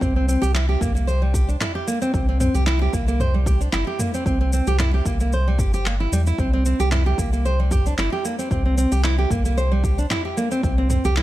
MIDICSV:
0, 0, Header, 1, 4, 480
1, 0, Start_track
1, 0, Tempo, 530973
1, 12, Time_signature, 4, 2, 24, 8
1, 10148, End_track
2, 0, Start_track
2, 0, Title_t, "Nylon-string guitar"
2, 0, Program_c, 0, 24
2, 16, Note_on_c, 0, 60, 80
2, 136, Note_off_c, 0, 60, 0
2, 145, Note_on_c, 0, 60, 73
2, 243, Note_off_c, 0, 60, 0
2, 255, Note_on_c, 0, 60, 71
2, 369, Note_off_c, 0, 60, 0
2, 376, Note_on_c, 0, 67, 94
2, 484, Note_off_c, 0, 67, 0
2, 492, Note_on_c, 0, 64, 105
2, 614, Note_off_c, 0, 64, 0
2, 621, Note_on_c, 0, 67, 74
2, 721, Note_off_c, 0, 67, 0
2, 733, Note_on_c, 0, 58, 77
2, 847, Note_off_c, 0, 58, 0
2, 858, Note_on_c, 0, 58, 79
2, 960, Note_off_c, 0, 58, 0
2, 971, Note_on_c, 0, 72, 84
2, 1093, Note_off_c, 0, 72, 0
2, 1102, Note_on_c, 0, 55, 76
2, 1202, Note_off_c, 0, 55, 0
2, 1212, Note_on_c, 0, 67, 82
2, 1328, Note_off_c, 0, 67, 0
2, 1342, Note_on_c, 0, 62, 76
2, 1405, Note_off_c, 0, 62, 0
2, 1454, Note_on_c, 0, 64, 100
2, 1575, Note_off_c, 0, 64, 0
2, 1582, Note_on_c, 0, 67, 74
2, 1682, Note_off_c, 0, 67, 0
2, 1694, Note_on_c, 0, 58, 83
2, 1815, Note_off_c, 0, 58, 0
2, 1823, Note_on_c, 0, 60, 87
2, 1922, Note_off_c, 0, 60, 0
2, 1935, Note_on_c, 0, 60, 83
2, 2055, Note_off_c, 0, 60, 0
2, 2067, Note_on_c, 0, 60, 78
2, 2162, Note_off_c, 0, 60, 0
2, 2173, Note_on_c, 0, 60, 79
2, 2288, Note_off_c, 0, 60, 0
2, 2300, Note_on_c, 0, 67, 101
2, 2406, Note_off_c, 0, 67, 0
2, 2410, Note_on_c, 0, 64, 107
2, 2533, Note_off_c, 0, 64, 0
2, 2545, Note_on_c, 0, 67, 71
2, 2643, Note_off_c, 0, 67, 0
2, 2656, Note_on_c, 0, 58, 81
2, 2773, Note_off_c, 0, 58, 0
2, 2784, Note_on_c, 0, 58, 79
2, 2882, Note_off_c, 0, 58, 0
2, 2897, Note_on_c, 0, 72, 87
2, 3016, Note_off_c, 0, 72, 0
2, 3022, Note_on_c, 0, 55, 73
2, 3122, Note_off_c, 0, 55, 0
2, 3134, Note_on_c, 0, 67, 84
2, 3248, Note_off_c, 0, 67, 0
2, 3259, Note_on_c, 0, 62, 78
2, 3323, Note_off_c, 0, 62, 0
2, 3368, Note_on_c, 0, 64, 99
2, 3492, Note_off_c, 0, 64, 0
2, 3498, Note_on_c, 0, 67, 72
2, 3600, Note_off_c, 0, 67, 0
2, 3612, Note_on_c, 0, 58, 78
2, 3734, Note_off_c, 0, 58, 0
2, 3745, Note_on_c, 0, 60, 83
2, 3843, Note_off_c, 0, 60, 0
2, 3852, Note_on_c, 0, 60, 85
2, 3974, Note_off_c, 0, 60, 0
2, 3984, Note_on_c, 0, 60, 80
2, 4083, Note_off_c, 0, 60, 0
2, 4098, Note_on_c, 0, 60, 75
2, 4211, Note_off_c, 0, 60, 0
2, 4225, Note_on_c, 0, 67, 99
2, 4329, Note_off_c, 0, 67, 0
2, 4335, Note_on_c, 0, 64, 111
2, 4456, Note_off_c, 0, 64, 0
2, 4464, Note_on_c, 0, 67, 70
2, 4563, Note_off_c, 0, 67, 0
2, 4579, Note_on_c, 0, 58, 80
2, 4697, Note_off_c, 0, 58, 0
2, 4708, Note_on_c, 0, 58, 77
2, 4805, Note_off_c, 0, 58, 0
2, 4823, Note_on_c, 0, 72, 82
2, 4939, Note_off_c, 0, 72, 0
2, 4950, Note_on_c, 0, 55, 79
2, 5046, Note_off_c, 0, 55, 0
2, 5060, Note_on_c, 0, 67, 81
2, 5172, Note_off_c, 0, 67, 0
2, 5187, Note_on_c, 0, 67, 98
2, 5284, Note_off_c, 0, 67, 0
2, 5299, Note_on_c, 0, 58, 83
2, 5369, Note_off_c, 0, 58, 0
2, 5427, Note_on_c, 0, 64, 68
2, 5529, Note_off_c, 0, 64, 0
2, 5541, Note_on_c, 0, 55, 78
2, 5609, Note_off_c, 0, 55, 0
2, 5670, Note_on_c, 0, 64, 83
2, 5771, Note_off_c, 0, 64, 0
2, 5781, Note_on_c, 0, 60, 80
2, 5896, Note_off_c, 0, 60, 0
2, 5906, Note_on_c, 0, 60, 78
2, 6004, Note_off_c, 0, 60, 0
2, 6018, Note_on_c, 0, 60, 75
2, 6130, Note_off_c, 0, 60, 0
2, 6145, Note_on_c, 0, 67, 100
2, 6249, Note_off_c, 0, 67, 0
2, 6255, Note_on_c, 0, 64, 104
2, 6375, Note_off_c, 0, 64, 0
2, 6384, Note_on_c, 0, 67, 77
2, 6482, Note_off_c, 0, 67, 0
2, 6495, Note_on_c, 0, 58, 73
2, 6613, Note_off_c, 0, 58, 0
2, 6624, Note_on_c, 0, 58, 75
2, 6723, Note_off_c, 0, 58, 0
2, 6738, Note_on_c, 0, 72, 81
2, 6857, Note_off_c, 0, 72, 0
2, 6866, Note_on_c, 0, 55, 76
2, 6964, Note_off_c, 0, 55, 0
2, 6979, Note_on_c, 0, 67, 86
2, 7091, Note_off_c, 0, 67, 0
2, 7110, Note_on_c, 0, 62, 72
2, 7169, Note_off_c, 0, 62, 0
2, 7217, Note_on_c, 0, 64, 99
2, 7337, Note_off_c, 0, 64, 0
2, 7344, Note_on_c, 0, 67, 76
2, 7443, Note_off_c, 0, 67, 0
2, 7457, Note_on_c, 0, 58, 78
2, 7577, Note_off_c, 0, 58, 0
2, 7582, Note_on_c, 0, 60, 77
2, 7681, Note_off_c, 0, 60, 0
2, 7694, Note_on_c, 0, 60, 84
2, 7815, Note_off_c, 0, 60, 0
2, 7824, Note_on_c, 0, 60, 81
2, 7923, Note_off_c, 0, 60, 0
2, 7933, Note_on_c, 0, 60, 74
2, 8048, Note_off_c, 0, 60, 0
2, 8062, Note_on_c, 0, 67, 102
2, 8167, Note_off_c, 0, 67, 0
2, 8175, Note_on_c, 0, 64, 108
2, 8295, Note_off_c, 0, 64, 0
2, 8302, Note_on_c, 0, 67, 76
2, 8402, Note_off_c, 0, 67, 0
2, 8417, Note_on_c, 0, 58, 77
2, 8534, Note_off_c, 0, 58, 0
2, 8545, Note_on_c, 0, 58, 76
2, 8643, Note_off_c, 0, 58, 0
2, 8656, Note_on_c, 0, 72, 86
2, 8776, Note_off_c, 0, 72, 0
2, 8783, Note_on_c, 0, 55, 78
2, 8882, Note_off_c, 0, 55, 0
2, 8896, Note_on_c, 0, 67, 80
2, 9010, Note_off_c, 0, 67, 0
2, 9025, Note_on_c, 0, 62, 78
2, 9086, Note_off_c, 0, 62, 0
2, 9135, Note_on_c, 0, 64, 101
2, 9255, Note_off_c, 0, 64, 0
2, 9265, Note_on_c, 0, 67, 70
2, 9363, Note_off_c, 0, 67, 0
2, 9376, Note_on_c, 0, 58, 83
2, 9496, Note_off_c, 0, 58, 0
2, 9504, Note_on_c, 0, 60, 80
2, 9603, Note_off_c, 0, 60, 0
2, 9615, Note_on_c, 0, 60, 86
2, 9736, Note_off_c, 0, 60, 0
2, 9745, Note_on_c, 0, 60, 78
2, 9843, Note_off_c, 0, 60, 0
2, 9856, Note_on_c, 0, 60, 79
2, 9970, Note_off_c, 0, 60, 0
2, 9988, Note_on_c, 0, 67, 104
2, 10090, Note_off_c, 0, 67, 0
2, 10101, Note_on_c, 0, 64, 109
2, 10148, Note_off_c, 0, 64, 0
2, 10148, End_track
3, 0, Start_track
3, 0, Title_t, "Sub bass"
3, 0, Program_c, 1, 38
3, 13, Note_on_c, 1, 36, 108
3, 333, Note_off_c, 1, 36, 0
3, 385, Note_on_c, 1, 36, 98
3, 693, Note_off_c, 1, 36, 0
3, 732, Note_on_c, 1, 36, 81
3, 1411, Note_off_c, 1, 36, 0
3, 1933, Note_on_c, 1, 36, 100
3, 2253, Note_off_c, 1, 36, 0
3, 2300, Note_on_c, 1, 36, 94
3, 2610, Note_off_c, 1, 36, 0
3, 2651, Note_on_c, 1, 36, 78
3, 3330, Note_off_c, 1, 36, 0
3, 3374, Note_on_c, 1, 31, 110
3, 3472, Note_off_c, 1, 31, 0
3, 3850, Note_on_c, 1, 36, 103
3, 4172, Note_off_c, 1, 36, 0
3, 4221, Note_on_c, 1, 36, 102
3, 4530, Note_off_c, 1, 36, 0
3, 4571, Note_on_c, 1, 36, 81
3, 5051, Note_on_c, 1, 31, 97
3, 5064, Note_off_c, 1, 36, 0
3, 5490, Note_off_c, 1, 31, 0
3, 5532, Note_on_c, 1, 40, 91
3, 5720, Note_off_c, 1, 40, 0
3, 5771, Note_on_c, 1, 36, 107
3, 6092, Note_off_c, 1, 36, 0
3, 6143, Note_on_c, 1, 36, 101
3, 6451, Note_off_c, 1, 36, 0
3, 6492, Note_on_c, 1, 36, 77
3, 7170, Note_off_c, 1, 36, 0
3, 7212, Note_on_c, 1, 31, 104
3, 7310, Note_off_c, 1, 31, 0
3, 7692, Note_on_c, 1, 36, 114
3, 8013, Note_off_c, 1, 36, 0
3, 8061, Note_on_c, 1, 36, 97
3, 8371, Note_off_c, 1, 36, 0
3, 8411, Note_on_c, 1, 36, 82
3, 9090, Note_off_c, 1, 36, 0
3, 9612, Note_on_c, 1, 36, 105
3, 9933, Note_off_c, 1, 36, 0
3, 9983, Note_on_c, 1, 36, 100
3, 10148, Note_off_c, 1, 36, 0
3, 10148, End_track
4, 0, Start_track
4, 0, Title_t, "Drums"
4, 12, Note_on_c, 9, 36, 127
4, 19, Note_on_c, 9, 45, 80
4, 22, Note_on_c, 9, 82, 36
4, 103, Note_off_c, 9, 36, 0
4, 109, Note_off_c, 9, 45, 0
4, 112, Note_off_c, 9, 82, 0
4, 262, Note_on_c, 9, 82, 80
4, 352, Note_off_c, 9, 82, 0
4, 391, Note_on_c, 9, 82, 44
4, 482, Note_off_c, 9, 82, 0
4, 500, Note_on_c, 9, 39, 110
4, 502, Note_on_c, 9, 82, 36
4, 590, Note_off_c, 9, 39, 0
4, 593, Note_off_c, 9, 82, 0
4, 733, Note_on_c, 9, 36, 108
4, 740, Note_on_c, 9, 45, 78
4, 743, Note_on_c, 9, 82, 85
4, 823, Note_off_c, 9, 36, 0
4, 830, Note_off_c, 9, 45, 0
4, 833, Note_off_c, 9, 82, 0
4, 869, Note_on_c, 9, 82, 46
4, 960, Note_off_c, 9, 82, 0
4, 979, Note_on_c, 9, 82, 34
4, 1069, Note_off_c, 9, 82, 0
4, 1212, Note_on_c, 9, 36, 106
4, 1218, Note_on_c, 9, 82, 90
4, 1302, Note_off_c, 9, 36, 0
4, 1308, Note_off_c, 9, 82, 0
4, 1347, Note_on_c, 9, 82, 47
4, 1438, Note_off_c, 9, 82, 0
4, 1457, Note_on_c, 9, 39, 97
4, 1457, Note_on_c, 9, 45, 73
4, 1459, Note_on_c, 9, 82, 35
4, 1547, Note_off_c, 9, 39, 0
4, 1547, Note_off_c, 9, 45, 0
4, 1550, Note_off_c, 9, 82, 0
4, 1699, Note_on_c, 9, 82, 83
4, 1790, Note_off_c, 9, 82, 0
4, 1825, Note_on_c, 9, 82, 45
4, 1916, Note_off_c, 9, 82, 0
4, 1932, Note_on_c, 9, 36, 127
4, 1938, Note_on_c, 9, 82, 35
4, 2023, Note_off_c, 9, 36, 0
4, 2029, Note_off_c, 9, 82, 0
4, 2172, Note_on_c, 9, 45, 83
4, 2175, Note_on_c, 9, 82, 80
4, 2262, Note_off_c, 9, 45, 0
4, 2265, Note_off_c, 9, 82, 0
4, 2305, Note_on_c, 9, 82, 46
4, 2395, Note_off_c, 9, 82, 0
4, 2412, Note_on_c, 9, 39, 100
4, 2415, Note_on_c, 9, 82, 34
4, 2503, Note_off_c, 9, 39, 0
4, 2505, Note_off_c, 9, 82, 0
4, 2651, Note_on_c, 9, 36, 113
4, 2654, Note_on_c, 9, 82, 77
4, 2742, Note_off_c, 9, 36, 0
4, 2744, Note_off_c, 9, 82, 0
4, 2784, Note_on_c, 9, 82, 49
4, 2874, Note_off_c, 9, 82, 0
4, 2893, Note_on_c, 9, 45, 76
4, 2895, Note_on_c, 9, 82, 37
4, 2983, Note_off_c, 9, 45, 0
4, 2986, Note_off_c, 9, 82, 0
4, 3130, Note_on_c, 9, 36, 111
4, 3136, Note_on_c, 9, 82, 89
4, 3221, Note_off_c, 9, 36, 0
4, 3226, Note_off_c, 9, 82, 0
4, 3265, Note_on_c, 9, 82, 52
4, 3355, Note_off_c, 9, 82, 0
4, 3372, Note_on_c, 9, 39, 100
4, 3375, Note_on_c, 9, 82, 32
4, 3463, Note_off_c, 9, 39, 0
4, 3465, Note_off_c, 9, 82, 0
4, 3610, Note_on_c, 9, 45, 85
4, 3613, Note_on_c, 9, 82, 86
4, 3700, Note_off_c, 9, 45, 0
4, 3703, Note_off_c, 9, 82, 0
4, 3744, Note_on_c, 9, 82, 48
4, 3834, Note_off_c, 9, 82, 0
4, 3850, Note_on_c, 9, 36, 126
4, 3855, Note_on_c, 9, 82, 35
4, 3940, Note_off_c, 9, 36, 0
4, 3945, Note_off_c, 9, 82, 0
4, 4093, Note_on_c, 9, 82, 83
4, 4184, Note_off_c, 9, 82, 0
4, 4222, Note_on_c, 9, 82, 46
4, 4312, Note_off_c, 9, 82, 0
4, 4332, Note_on_c, 9, 39, 98
4, 4332, Note_on_c, 9, 45, 80
4, 4335, Note_on_c, 9, 82, 36
4, 4422, Note_off_c, 9, 39, 0
4, 4422, Note_off_c, 9, 45, 0
4, 4425, Note_off_c, 9, 82, 0
4, 4570, Note_on_c, 9, 36, 107
4, 4573, Note_on_c, 9, 82, 81
4, 4661, Note_off_c, 9, 36, 0
4, 4664, Note_off_c, 9, 82, 0
4, 4702, Note_on_c, 9, 82, 48
4, 4792, Note_off_c, 9, 82, 0
4, 4814, Note_on_c, 9, 82, 33
4, 4904, Note_off_c, 9, 82, 0
4, 5051, Note_on_c, 9, 36, 109
4, 5053, Note_on_c, 9, 45, 74
4, 5056, Note_on_c, 9, 82, 84
4, 5141, Note_off_c, 9, 36, 0
4, 5144, Note_off_c, 9, 45, 0
4, 5147, Note_off_c, 9, 82, 0
4, 5186, Note_on_c, 9, 82, 48
4, 5276, Note_off_c, 9, 82, 0
4, 5296, Note_on_c, 9, 39, 94
4, 5299, Note_on_c, 9, 82, 33
4, 5387, Note_off_c, 9, 39, 0
4, 5389, Note_off_c, 9, 82, 0
4, 5540, Note_on_c, 9, 82, 84
4, 5630, Note_off_c, 9, 82, 0
4, 5665, Note_on_c, 9, 82, 46
4, 5756, Note_off_c, 9, 82, 0
4, 5772, Note_on_c, 9, 36, 119
4, 5775, Note_on_c, 9, 82, 33
4, 5862, Note_off_c, 9, 36, 0
4, 5865, Note_off_c, 9, 82, 0
4, 6016, Note_on_c, 9, 82, 80
4, 6107, Note_off_c, 9, 82, 0
4, 6146, Note_on_c, 9, 82, 43
4, 6237, Note_off_c, 9, 82, 0
4, 6253, Note_on_c, 9, 39, 99
4, 6253, Note_on_c, 9, 45, 72
4, 6256, Note_on_c, 9, 82, 33
4, 6344, Note_off_c, 9, 39, 0
4, 6344, Note_off_c, 9, 45, 0
4, 6346, Note_off_c, 9, 82, 0
4, 6492, Note_on_c, 9, 36, 110
4, 6498, Note_on_c, 9, 82, 84
4, 6582, Note_off_c, 9, 36, 0
4, 6588, Note_off_c, 9, 82, 0
4, 6626, Note_on_c, 9, 82, 46
4, 6717, Note_off_c, 9, 82, 0
4, 6738, Note_on_c, 9, 82, 33
4, 6828, Note_off_c, 9, 82, 0
4, 6972, Note_on_c, 9, 36, 103
4, 6972, Note_on_c, 9, 45, 85
4, 6974, Note_on_c, 9, 82, 84
4, 7062, Note_off_c, 9, 36, 0
4, 7062, Note_off_c, 9, 45, 0
4, 7065, Note_off_c, 9, 82, 0
4, 7106, Note_on_c, 9, 82, 48
4, 7196, Note_off_c, 9, 82, 0
4, 7217, Note_on_c, 9, 39, 90
4, 7220, Note_on_c, 9, 82, 33
4, 7308, Note_off_c, 9, 39, 0
4, 7310, Note_off_c, 9, 82, 0
4, 7459, Note_on_c, 9, 82, 78
4, 7550, Note_off_c, 9, 82, 0
4, 7586, Note_on_c, 9, 82, 46
4, 7677, Note_off_c, 9, 82, 0
4, 7692, Note_on_c, 9, 36, 124
4, 7693, Note_on_c, 9, 45, 79
4, 7696, Note_on_c, 9, 82, 33
4, 7782, Note_off_c, 9, 36, 0
4, 7784, Note_off_c, 9, 45, 0
4, 7787, Note_off_c, 9, 82, 0
4, 7936, Note_on_c, 9, 82, 81
4, 8026, Note_off_c, 9, 82, 0
4, 8063, Note_on_c, 9, 82, 43
4, 8153, Note_off_c, 9, 82, 0
4, 8174, Note_on_c, 9, 39, 91
4, 8176, Note_on_c, 9, 82, 33
4, 8264, Note_off_c, 9, 39, 0
4, 8267, Note_off_c, 9, 82, 0
4, 8412, Note_on_c, 9, 36, 95
4, 8416, Note_on_c, 9, 45, 80
4, 8419, Note_on_c, 9, 82, 75
4, 8502, Note_off_c, 9, 36, 0
4, 8507, Note_off_c, 9, 45, 0
4, 8509, Note_off_c, 9, 82, 0
4, 8546, Note_on_c, 9, 82, 46
4, 8636, Note_off_c, 9, 82, 0
4, 8657, Note_on_c, 9, 82, 32
4, 8747, Note_off_c, 9, 82, 0
4, 8893, Note_on_c, 9, 36, 100
4, 8897, Note_on_c, 9, 82, 77
4, 8983, Note_off_c, 9, 36, 0
4, 8987, Note_off_c, 9, 82, 0
4, 9027, Note_on_c, 9, 82, 46
4, 9118, Note_off_c, 9, 82, 0
4, 9137, Note_on_c, 9, 39, 97
4, 9137, Note_on_c, 9, 45, 73
4, 9140, Note_on_c, 9, 82, 31
4, 9228, Note_off_c, 9, 39, 0
4, 9228, Note_off_c, 9, 45, 0
4, 9230, Note_off_c, 9, 82, 0
4, 9378, Note_on_c, 9, 82, 82
4, 9469, Note_off_c, 9, 82, 0
4, 9505, Note_on_c, 9, 82, 43
4, 9596, Note_off_c, 9, 82, 0
4, 9613, Note_on_c, 9, 36, 117
4, 9617, Note_on_c, 9, 82, 32
4, 9704, Note_off_c, 9, 36, 0
4, 9708, Note_off_c, 9, 82, 0
4, 9852, Note_on_c, 9, 45, 86
4, 9855, Note_on_c, 9, 82, 79
4, 9942, Note_off_c, 9, 45, 0
4, 9945, Note_off_c, 9, 82, 0
4, 9985, Note_on_c, 9, 82, 44
4, 10076, Note_off_c, 9, 82, 0
4, 10092, Note_on_c, 9, 39, 99
4, 10095, Note_on_c, 9, 82, 30
4, 10148, Note_off_c, 9, 39, 0
4, 10148, Note_off_c, 9, 82, 0
4, 10148, End_track
0, 0, End_of_file